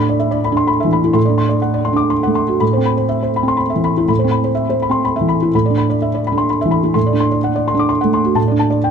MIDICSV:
0, 0, Header, 1, 2, 480
1, 0, Start_track
1, 0, Key_signature, 0, "minor"
1, 0, Tempo, 469484
1, 1188, Time_signature, 3, 2, 24, 8
1, 1668, Tempo, 493016
1, 4068, Tempo, 478851
1, 5988, Tempo, 470958
1, 8939, End_track
2, 0, Start_track
2, 0, Title_t, "Felt piano"
2, 0, Program_c, 0, 0
2, 0, Control_c, 0, 64, 127
2, 0, Note_on_c, 0, 45, 52
2, 0, Note_on_c, 0, 62, 41
2, 0, Note_on_c, 0, 74, 43
2, 0, Note_on_c, 0, 83, 48
2, 94, Note_off_c, 0, 74, 0
2, 94, Note_on_c, 0, 74, 45
2, 149, Note_off_c, 0, 62, 0
2, 161, Note_off_c, 0, 83, 0
2, 199, Note_on_c, 0, 76, 49
2, 291, Note_off_c, 0, 74, 0
2, 319, Note_on_c, 0, 74, 48
2, 404, Note_off_c, 0, 76, 0
2, 455, Note_on_c, 0, 83, 46
2, 524, Note_off_c, 0, 74, 0
2, 530, Note_on_c, 0, 62, 40
2, 581, Note_on_c, 0, 84, 51
2, 654, Note_off_c, 0, 83, 0
2, 689, Note_on_c, 0, 83, 47
2, 705, Note_off_c, 0, 84, 0
2, 797, Note_off_c, 0, 62, 0
2, 820, Note_on_c, 0, 76, 43
2, 863, Note_on_c, 0, 52, 40
2, 892, Note_off_c, 0, 83, 0
2, 947, Note_on_c, 0, 83, 44
2, 1017, Note_off_c, 0, 76, 0
2, 1064, Note_on_c, 0, 64, 43
2, 1122, Note_off_c, 0, 52, 0
2, 1139, Note_off_c, 0, 83, 0
2, 1140, Note_off_c, 0, 45, 0
2, 1159, Note_on_c, 0, 84, 45
2, 1160, Note_on_c, 0, 45, 51
2, 1186, Note_off_c, 0, 64, 0
2, 1204, Control_c, 0, 64, 0
2, 1282, Note_on_c, 0, 74, 44
2, 1318, Note_on_c, 0, 62, 36
2, 1364, Note_off_c, 0, 84, 0
2, 1395, Control_c, 0, 64, 127
2, 1408, Note_on_c, 0, 84, 42
2, 1486, Note_off_c, 0, 74, 0
2, 1523, Note_on_c, 0, 74, 44
2, 1589, Note_off_c, 0, 62, 0
2, 1610, Note_off_c, 0, 84, 0
2, 1654, Note_on_c, 0, 78, 45
2, 1727, Note_off_c, 0, 74, 0
2, 1771, Note_on_c, 0, 74, 40
2, 1848, Note_off_c, 0, 78, 0
2, 1878, Note_on_c, 0, 84, 43
2, 1956, Note_on_c, 0, 62, 40
2, 1967, Note_off_c, 0, 74, 0
2, 1992, Note_on_c, 0, 86, 46
2, 2081, Note_off_c, 0, 84, 0
2, 2125, Note_on_c, 0, 84, 37
2, 2126, Note_off_c, 0, 86, 0
2, 2224, Note_off_c, 0, 62, 0
2, 2252, Note_on_c, 0, 78, 43
2, 2291, Note_on_c, 0, 57, 35
2, 2326, Note_off_c, 0, 84, 0
2, 2370, Note_on_c, 0, 84, 42
2, 2450, Note_off_c, 0, 78, 0
2, 2492, Note_on_c, 0, 66, 38
2, 2555, Note_off_c, 0, 57, 0
2, 2570, Note_off_c, 0, 84, 0
2, 2573, Note_off_c, 0, 45, 0
2, 2614, Note_on_c, 0, 83, 40
2, 2618, Note_on_c, 0, 45, 44
2, 2619, Note_off_c, 0, 66, 0
2, 2644, Control_c, 0, 64, 0
2, 2739, Note_on_c, 0, 72, 38
2, 2780, Note_on_c, 0, 60, 33
2, 2793, Control_c, 0, 64, 127
2, 2814, Note_off_c, 0, 83, 0
2, 2859, Note_on_c, 0, 83, 38
2, 2936, Note_off_c, 0, 72, 0
2, 2972, Note_on_c, 0, 72, 35
2, 3041, Note_off_c, 0, 60, 0
2, 3057, Note_off_c, 0, 83, 0
2, 3087, Note_on_c, 0, 76, 41
2, 3173, Note_off_c, 0, 72, 0
2, 3221, Note_on_c, 0, 72, 37
2, 3290, Note_off_c, 0, 76, 0
2, 3353, Note_on_c, 0, 83, 38
2, 3417, Note_off_c, 0, 72, 0
2, 3417, Note_on_c, 0, 60, 35
2, 3468, Note_on_c, 0, 84, 45
2, 3541, Note_off_c, 0, 83, 0
2, 3555, Note_on_c, 0, 83, 38
2, 3589, Note_off_c, 0, 84, 0
2, 3680, Note_off_c, 0, 60, 0
2, 3680, Note_on_c, 0, 76, 39
2, 3735, Note_on_c, 0, 52, 34
2, 3765, Note_off_c, 0, 83, 0
2, 3820, Note_on_c, 0, 83, 40
2, 3887, Note_off_c, 0, 76, 0
2, 3948, Note_on_c, 0, 64, 34
2, 3998, Note_off_c, 0, 52, 0
2, 4015, Note_off_c, 0, 83, 0
2, 4025, Note_off_c, 0, 45, 0
2, 4051, Note_on_c, 0, 45, 43
2, 4057, Note_on_c, 0, 83, 36
2, 4067, Note_off_c, 0, 64, 0
2, 4089, Control_c, 0, 64, 0
2, 4161, Note_on_c, 0, 72, 37
2, 4214, Note_on_c, 0, 60, 36
2, 4226, Control_c, 0, 64, 127
2, 4254, Note_off_c, 0, 83, 0
2, 4283, Note_on_c, 0, 83, 35
2, 4367, Note_off_c, 0, 72, 0
2, 4414, Note_on_c, 0, 72, 35
2, 4477, Note_off_c, 0, 60, 0
2, 4487, Note_off_c, 0, 83, 0
2, 4521, Note_on_c, 0, 76, 42
2, 4613, Note_off_c, 0, 72, 0
2, 4668, Note_on_c, 0, 72, 38
2, 4726, Note_off_c, 0, 76, 0
2, 4797, Note_on_c, 0, 83, 41
2, 4860, Note_off_c, 0, 72, 0
2, 4866, Note_on_c, 0, 60, 37
2, 4884, Note_on_c, 0, 84, 43
2, 4984, Note_off_c, 0, 83, 0
2, 5016, Note_off_c, 0, 84, 0
2, 5020, Note_on_c, 0, 83, 37
2, 5122, Note_off_c, 0, 60, 0
2, 5133, Note_on_c, 0, 76, 42
2, 5183, Note_on_c, 0, 52, 35
2, 5216, Note_off_c, 0, 83, 0
2, 5260, Note_on_c, 0, 83, 37
2, 5332, Note_off_c, 0, 76, 0
2, 5398, Note_on_c, 0, 64, 37
2, 5441, Note_off_c, 0, 52, 0
2, 5455, Note_off_c, 0, 83, 0
2, 5459, Note_off_c, 0, 45, 0
2, 5513, Note_off_c, 0, 64, 0
2, 5522, Note_on_c, 0, 45, 45
2, 5526, Note_on_c, 0, 83, 39
2, 5528, Control_c, 0, 64, 0
2, 5632, Note_on_c, 0, 74, 36
2, 5676, Note_on_c, 0, 62, 33
2, 5701, Control_c, 0, 64, 127
2, 5709, Note_off_c, 0, 83, 0
2, 5752, Note_on_c, 0, 83, 37
2, 5821, Note_off_c, 0, 74, 0
2, 5872, Note_on_c, 0, 74, 38
2, 5928, Note_off_c, 0, 62, 0
2, 5941, Note_off_c, 0, 83, 0
2, 5995, Note_on_c, 0, 76, 42
2, 6063, Note_off_c, 0, 74, 0
2, 6124, Note_on_c, 0, 74, 37
2, 6185, Note_off_c, 0, 76, 0
2, 6251, Note_on_c, 0, 83, 41
2, 6302, Note_on_c, 0, 62, 35
2, 6310, Note_off_c, 0, 74, 0
2, 6360, Note_on_c, 0, 84, 44
2, 6434, Note_off_c, 0, 83, 0
2, 6476, Note_off_c, 0, 84, 0
2, 6483, Note_on_c, 0, 83, 36
2, 6564, Note_off_c, 0, 62, 0
2, 6599, Note_on_c, 0, 76, 42
2, 6641, Note_on_c, 0, 52, 37
2, 6670, Note_off_c, 0, 83, 0
2, 6700, Note_on_c, 0, 83, 41
2, 6788, Note_off_c, 0, 76, 0
2, 6827, Note_on_c, 0, 64, 38
2, 6892, Note_off_c, 0, 52, 0
2, 6898, Note_off_c, 0, 83, 0
2, 6918, Note_off_c, 0, 45, 0
2, 6934, Note_on_c, 0, 84, 44
2, 6942, Note_on_c, 0, 45, 46
2, 6949, Note_off_c, 0, 64, 0
2, 6970, Control_c, 0, 64, 0
2, 7059, Note_on_c, 0, 74, 38
2, 7124, Note_on_c, 0, 62, 36
2, 7129, Control_c, 0, 64, 127
2, 7133, Note_off_c, 0, 84, 0
2, 7202, Note_on_c, 0, 84, 42
2, 7256, Note_off_c, 0, 74, 0
2, 7319, Note_on_c, 0, 74, 38
2, 7372, Note_off_c, 0, 62, 0
2, 7387, Note_off_c, 0, 84, 0
2, 7442, Note_on_c, 0, 78, 46
2, 7505, Note_off_c, 0, 74, 0
2, 7562, Note_on_c, 0, 74, 44
2, 7627, Note_off_c, 0, 78, 0
2, 7684, Note_on_c, 0, 84, 45
2, 7746, Note_off_c, 0, 74, 0
2, 7752, Note_on_c, 0, 62, 41
2, 7804, Note_on_c, 0, 86, 48
2, 7868, Note_off_c, 0, 84, 0
2, 7901, Note_on_c, 0, 84, 40
2, 7916, Note_off_c, 0, 86, 0
2, 8006, Note_off_c, 0, 62, 0
2, 8024, Note_on_c, 0, 78, 43
2, 8057, Note_on_c, 0, 57, 40
2, 8097, Note_off_c, 0, 84, 0
2, 8154, Note_on_c, 0, 84, 46
2, 8218, Note_off_c, 0, 78, 0
2, 8262, Note_on_c, 0, 66, 41
2, 8319, Note_off_c, 0, 57, 0
2, 8342, Note_off_c, 0, 45, 0
2, 8343, Note_off_c, 0, 84, 0
2, 8370, Note_on_c, 0, 45, 48
2, 8376, Note_on_c, 0, 81, 41
2, 8385, Note_off_c, 0, 66, 0
2, 8408, Control_c, 0, 64, 0
2, 8500, Note_on_c, 0, 74, 37
2, 8536, Note_on_c, 0, 62, 39
2, 8569, Control_c, 0, 64, 127
2, 8573, Note_off_c, 0, 81, 0
2, 8619, Note_on_c, 0, 81, 40
2, 8695, Note_off_c, 0, 74, 0
2, 8730, Note_on_c, 0, 74, 45
2, 8797, Note_off_c, 0, 62, 0
2, 8815, Note_off_c, 0, 81, 0
2, 8870, Note_on_c, 0, 79, 48
2, 8930, Note_off_c, 0, 74, 0
2, 8939, Note_off_c, 0, 45, 0
2, 8939, Note_off_c, 0, 79, 0
2, 8939, End_track
0, 0, End_of_file